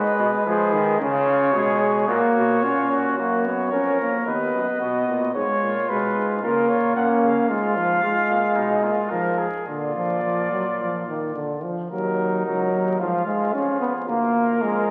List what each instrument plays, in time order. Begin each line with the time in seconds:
Already playing: trombone G#3, flugelhorn B4, trumpet D#5
0.19 bass trombone B2
0.46 bass trombone F3, trombone G#3, flugelhorn G#4, trumpet B4
0.73 bass trombone D#3
0.99 bass trombone C#3, trombone C#4, flugelhorn F4, trumpet C#5
1.54 bass trombone B2, trombone G#3, flugelhorn G#4
1.81 flugelhorn G#4
2.08 bass trombone A#2, trombone A#3, flugelhorn F#4, trumpet C#5
2.35 bass trombone B2
2.63 bass trombone A#2, trombone C#4, flugelhorn F4
2.91 flugelhorn F#4
3.18 bass trombone F#2, trombone A#3, flugelhorn F#4, trumpet C#5
3.45 trombone B3
3.72 bass trombone F2, trombone C#4, flugelhorn A#4
4.00 trombone A#3
4.26 bass trombone D#2, trombone B3, flugelhorn B4, trumpet D#5
4.54 bass trombone F#2
4.81 bass trombone B2, trombone B3, flugelhorn F#4
5.08 bass trombone A#2
5.35 bass trombone G#2, trombone G#3, flugelhorn F4, trumpet C#5
5.62 bass trombone A#2
5.89 bass trombone B2, trombone G#3, trumpet B4
6.16 bass trombone G#2
6.42 bass trombone C#3, trombone A#3, flugelhorn F4, trumpet A#4
6.69 bass trombone A#2, trumpet C#5
6.96 bass trombone A#2, trombone A#3, flugelhorn C#4, trumpet F#5
7.23 bass trombone C#3, trumpet F5
7.49 bass trombone G#2, trombone G#3, flugelhorn F4, trumpet F5
7.77 trombone F3
8.03 bass trombone G#2, trombone G#3, flugelhorn F4
8.30 bass trombone A#2
8.56 bass trombone B2, flugelhorn D#4
8.83 bass trombone A#2, flugelhorn F4
9.10 bass trombone G#2, trombone F3, flugelhorn A#4
9.38 flugelhorn G#4
9.67 bass trombone A#2, trombone D3, flugelhorn F4, trumpet D5
9.95 trombone F3
10.23 trombone F3
10.52 trombone F#3
10.80 trombone F3
11.07 trombone D#3
11.35 trombone D3
11.63 trombone F3
11.90 bass trombone D#2, trombone F#3, flugelhorn D#4, trumpet A#4
12.45 bass trombone C#2, trombone F#3, trumpet A#4
12.73 bass trombone D#2
12.99 bass trombone G#2, trombone F3, flugelhorn F4, trumpet F5
13.26 trombone G#3
13.53 bass trombone F2, trombone C#4, flugelhorn F4, trumpet G#4
13.80 trombone B3
14.08 bass trombone D2, trombone A#3, flugelhorn F4, trumpet A#4
14.62 bass trombone F2, trombone G#3